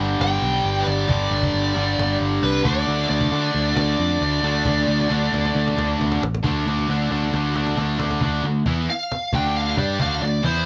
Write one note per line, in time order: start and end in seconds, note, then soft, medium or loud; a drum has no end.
0.00 0.15 G1 loud
0.00 1.07 G2 medium
0.00 1.09 D3 medium
0.00 1.08 G3 medium
0.00 1.48 D4 medium
0.20 0.37 G1 loud
0.20 0.82 G5 loud
0.20 cajon slap loud
0.42 0.60 B1 medium
0.42 cajon slap soft
0.64 0.82 G1 medium
0.64 cajon slap medium
0.80 0.87 B4 medium
0.87 1.04 G1 medium
0.87 2.17 D5 medium
1.08 1.27 G1 loud
1.08 1.74 G2 medium
1.08 1.75 D3 loud
1.08 1.73 G3 loud
1.08 cajon bass loud
1.31 1.49 G1 loud
1.42 cajon bass medium
1.54 1.72 G1 loud
1.54 cajon slap medium
1.74 1.94 G1 loud
1.74 2.65 G2 medium
1.74 2.62 D3 medium
1.74 2.63 G3 medium
1.74 cajon slap soft
1.99 2.16 G1 loud
1.99 cajon slap loud
2.20 2.38 G1 medium
2.20 cajon slap soft
2.43 2.60 C2 medium
2.43 2.66 B4 medium
2.43 cajon slap medium
2.63 2.83 D2 medium
2.63 3.31 D3 loud
2.63 3.33 A3 loud
2.63 3.35 D4 loud
2.63 3.08 D5 loud
2.63 cajon bass loud
2.87 3.05 D2 loud
3.09 3.28 D2 loud
3.09 3.75 D5 loud
3.09 cajon slap soft
3.21 cajon bass medium
3.31 4.42 D3 medium
3.31 3.50 D3 loud
3.31 4.44 A3 medium
3.31 4.45 D4 loud
3.31 cajon slap medium
3.54 3.72 D2 loud
3.54 cajon slap soft
3.76 3.94 D2 loud
3.76 5.95 D5 loud
3.76 cajon slap loud
3.99 4.17 F2 medium
3.99 cajon slap soft
4.21 4.39 D2 loud
4.21 cajon slap medium
4.42 4.61 D2 medium
4.42 5.08 D3 medium
4.42 5.09 A3 loud
4.42 5.10 D4 loud
4.42 cajon slap soft
4.65 4.83 D2 loud
4.65 cajon bass loud
4.65 cajon slap medium
4.77 cajon slap medium
4.88 5.05 D2 medium
5.00 cajon slap medium
5.09 5.28 D2 loud
5.09 6.20 D3 medium
5.09 6.21 A3 medium
5.09 6.22 D4 medium
5.09 cajon slap medium
5.33 5.50 D2 loud
5.33 cajon slap medium
5.45 cajon slap medium
5.55 5.73 D2 loud
5.55 cajon slap medium
5.68 cajon slap medium
5.77 5.94 D2 medium
5.77 cajon slap loud
6.00 6.17 D2 medium
6.00 cajon slap medium
6.00 cajon slap loud
6.12 cajon slap medium
6.22 6.40 A1 medium
6.22 cajon slap loud
6.34 cajon slap loud
6.44 6.65 D2 medium
6.44 6.66 D3 medium
6.44 6.67 A3 loud
6.44 6.68 D4 loud
6.44 cajon bass loud
6.44 cajon slap medium
6.66 6.87 D2 medium
6.66 6.88 D3 medium
6.66 6.89 A3 medium
6.66 6.90 D4 medium
6.66 cajon slap medium
6.79 cajon slap medium
6.89 7.09 D2 medium
6.89 7.09 D3 medium
6.89 7.10 A3 medium
6.89 7.11 D4 medium
6.89 cajon slap medium
7.10 7.31 D2 medium
7.10 7.32 D3 medium
7.10 7.33 A3 loud
7.10 7.34 D4 loud
7.10 cajon slap medium
7.23 cajon slap medium
7.33 7.75 D2 medium
7.33 7.54 D3 medium
7.33 7.55 A3 medium
7.33 7.55 D4 medium
7.33 cajon slap medium
7.55 7.76 D3 medium
7.55 7.77 A3 medium
7.55 7.78 D4 medium
7.55 cajon slap medium
7.67 cajon slap medium
7.77 7.98 D2 medium
7.77 7.97 D3 medium
7.77 7.98 A3 medium
7.77 7.98 D4 medium
7.77 cajon slap medium
7.99 8.20 D2 medium
7.99 8.20 D3 medium
7.99 8.20 A3 medium
7.99 8.20 D4 medium
7.99 cajon slap loud
8.11 cajon slap medium
8.21 8.42 D2 medium
8.21 8.43 D3 medium
8.21 8.44 A3 medium
8.21 8.44 D4 loud
8.21 cajon bass loud
8.43 8.64 D2 medium
8.43 8.62 D3 medium
8.43 8.62 A3 medium
8.43 cajon slap soft
8.66 8.86 E2 medium
8.66 8.88 E3 medium
8.66 8.88 B3 medium
8.66 8.88 E4 loud
8.66 cajon bass loud
8.88 9.32 F5 medium
8.88 cajon slap soft
9.12 cajon slap loud
9.33 9.74 D2 medium
9.33 9.77 D3 medium
9.33 9.77 A3 medium
9.33 9.77 D4 medium
9.33 9.55 G5 medium
9.33 cajon bass loud
9.56 9.77 F5 medium
9.56 cajon slap soft
9.77 9.98 G2 medium
9.77 9.99 G3 medium
9.77 9.99 D4 medium
9.77 10.00 G4 medium
9.77 9.99 D5 medium
9.77 cajon bass loud
9.99 10.20 D2 medium
9.99 10.21 D3 medium
9.99 10.21 A3 medium
9.99 10.22 D4 loud
9.99 10.22 F5 medium
9.99 cajon bass loud
10.22 10.42 D2 medium
10.22 10.40 D3 medium
10.22 10.40 A3 medium
10.22 10.43 D5 medium
10.22 cajon slap soft
10.43 10.65 E2 medium
10.43 10.65 E3 medium
10.43 10.65 B3 loud
10.43 10.65 E4 medium
10.43 10.65 C5 medium
10.43 cajon bass loud